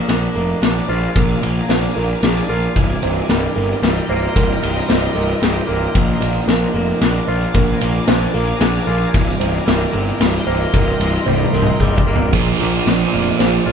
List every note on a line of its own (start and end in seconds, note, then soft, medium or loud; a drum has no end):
0.00 0.89 A#2 medium
0.00 0.35 A#3 medium
0.00 2.73 A#4 medium
0.00 2.73 F5 medium
0.00 2.72 G#5 medium
0.00 2.73 D6 medium
0.08 0.26 A#1 medium
0.08 0.61 D4 medium
0.08 0.34 A#4 medium
0.08 snare medium
0.08 ride medium
0.35 0.53 F1 medium
0.35 1.43 A#3 medium
0.35 0.89 A#4 medium
0.62 0.79 A#1 medium
0.62 1.68 D4 medium
0.62 snare medium
0.62 ride medium
0.88 1.06 A#1 medium
0.88 2.23 F4 medium
0.88 1.15 C5 medium
1.16 1.33 A#1 medium
1.16 2.49 A#2 medium
1.16 1.69 A#4 medium
1.16 kick medium
1.16 ride medium
1.43 1.60 A#1 medium
1.43 1.95 A#3 medium
1.43 ride medium
1.69 1.86 A#1 medium
1.69 2.22 D4 medium
1.69 1.96 C5 medium
1.69 snare medium
1.69 ride medium
1.96 2.13 A#1 medium
1.96 2.79 A#3 medium
1.96 2.23 A#4 medium
2.22 2.40 A#1 medium
2.22 2.76 D4 medium
2.22 2.49 G#4 medium
2.22 snare medium
2.22 ride soft
2.49 2.66 A#1 medium
2.49 2.76 F4 medium
2.49 2.76 A#4 medium
2.76 2.93 C1 medium
2.76 4.09 C2 medium
2.76 5.92 A#4 medium
2.76 5.92 D#5 medium
2.76 5.93 G5 medium
2.76 5.93 C6 medium
2.76 kick medium
2.76 ride medium
3.02 3.20 C1 medium
3.02 3.54 C3 medium
3.02 3.29 C5 medium
3.02 ride soft
3.29 3.46 C1 medium
3.29 3.82 G3 medium
3.29 3.53 A#4 medium
3.29 snare medium
3.29 ride medium
3.55 3.73 G1 medium
3.55 4.61 C3 medium
3.55 4.08 A#4 medium
3.82 3.99 C1 medium
3.82 4.87 G3 medium
3.82 snare medium
3.82 ride medium
4.09 4.26 C1 medium
4.09 5.67 A#3 medium
4.09 4.36 C5 medium
4.36 4.53 C1 medium
4.36 5.69 C2 medium
4.36 4.89 A#4 medium
4.36 kick medium
4.36 ride medium
4.62 4.80 C1 medium
4.62 5.13 C3 medium
4.62 ride medium
4.88 5.06 C1 medium
4.88 5.40 G3 medium
4.88 5.15 C5 medium
4.88 snare medium
4.88 ride medium
5.15 5.33 C1 medium
5.15 5.95 C3 medium
5.15 5.42 A#4 medium
5.41 5.59 C1 medium
5.41 5.95 G3 medium
5.41 5.68 G#4 medium
5.41 snare medium
5.41 ride medium
5.67 5.86 C1 medium
5.67 6.21 A#3 medium
5.67 5.95 A#4 medium
5.95 6.12 A#1 medium
5.95 7.28 A#2 medium
5.95 12.30 A#4 medium
5.95 9.11 F5 medium
5.95 9.11 G#5 medium
5.95 9.11 D6 medium
5.95 kick medium
5.95 ride medium
6.21 6.39 A#1 medium
6.21 6.74 A#3 medium
6.21 6.48 D5 medium
6.21 ride medium
6.47 6.65 A#1 medium
6.47 7.00 D4 medium
6.47 6.73 A#4 medium
6.47 snare medium
6.47 ride soft
6.74 6.92 F1 medium
6.74 7.81 A#3 medium
6.74 7.28 A#4 medium
7.01 7.18 A#1 medium
7.01 8.07 D4 medium
7.01 snare medium
7.01 ride medium
7.27 7.45 A#1 medium
7.27 8.61 F4 medium
7.27 7.54 C5 medium
7.54 7.72 A#1 medium
7.54 8.88 A#2 medium
7.54 8.08 A#4 medium
7.54 kick medium
7.54 ride medium
7.81 7.98 A#1 medium
7.81 8.34 A#3 medium
7.81 ride medium
8.07 8.25 A#1 medium
8.07 8.60 D4 medium
8.07 8.34 C5 medium
8.07 snare medium
8.07 ride medium
8.33 8.52 A#1 medium
8.33 9.17 A#3 medium
8.33 8.61 A#4 medium
8.60 8.78 A#1 medium
8.60 9.14 D4 medium
8.60 8.87 G#4 medium
8.60 snare medium
8.60 ride medium
8.86 9.04 A#1 medium
8.86 9.14 F4 medium
8.86 9.14 A#4 medium
9.14 9.31 C1 medium
9.14 10.47 C2 medium
9.14 12.31 D#5 medium
9.14 12.30 G5 medium
9.14 12.30 C6 medium
9.14 kick loud
9.14 ride medium
9.40 9.58 C1 medium
9.40 9.91 C3 medium
9.40 9.67 C5 medium
9.40 ride medium
9.66 9.84 C1 medium
9.66 10.19 G3 medium
9.66 9.92 A#4 medium
9.66 snare medium
9.66 ride medium
9.93 10.11 G1 medium
9.93 11.00 C3 medium
9.93 10.47 A#4 medium
10.20 10.37 C1 medium
10.20 11.27 G3 medium
10.20 snare medium
10.20 ride medium
10.47 10.64 C1 medium
10.47 11.80 A#3 medium
10.47 10.74 C5 medium
10.74 10.91 C1 medium
10.74 12.07 C2 medium
10.74 11.27 A#4 medium
10.74 kick medium
10.74 ride medium
11.00 11.17 C1 medium
11.00 11.53 C3 medium
11.00 ride medium
11.26 11.44 C1 medium
11.26 11.80 G3 medium
11.26 11.53 C5 medium
11.26 high tom medium
11.44 high tom soft
11.53 11.71 C1 medium
11.53 12.34 C3 medium
11.53 11.80 A#4 medium
11.62 mid tom medium
11.79 11.97 C1 medium
11.79 12.34 G3 medium
11.79 12.06 G#4 medium
11.79 kick medium
11.98 kick medium
12.05 12.35 C1 medium
12.05 12.34 A#3 medium
12.05 12.33 A#4 medium
12.16 floor tom medium
12.31 12.51 A#1 medium
12.31 13.72 A#2 medium
12.31 13.67 A#2 medium
12.31 13.72 F3 medium
12.31 13.72 A#3 medium
12.31 13.72 D4 medium
12.31 13.72 F4 medium
12.31 12.59 G#4 medium
12.31 13.72 A#4 medium
12.31 13.72 F5 medium
12.31 13.72 G#5 medium
12.31 13.72 D6 medium
12.31 kick medium
12.31 ride medium
12.36 13.72 A#4 medium
12.58 12.78 A#1 medium
12.58 13.13 A#3 soft
12.58 13.13 A#4 medium
12.58 ride medium
12.87 13.04 A#1 medium
12.87 13.39 D4 medium
12.87 snare medium
12.87 ride medium
13.12 13.31 F1 medium
13.12 13.72 A#3 medium
13.12 13.39 D5 medium
13.39 13.57 A#1 medium
13.39 13.72 D4 medium
13.39 13.66 C5 medium
13.39 snare medium
13.39 ride medium
13.66 13.72 A#1 medium
13.66 13.72 F4 medium
13.66 13.72 A#4 medium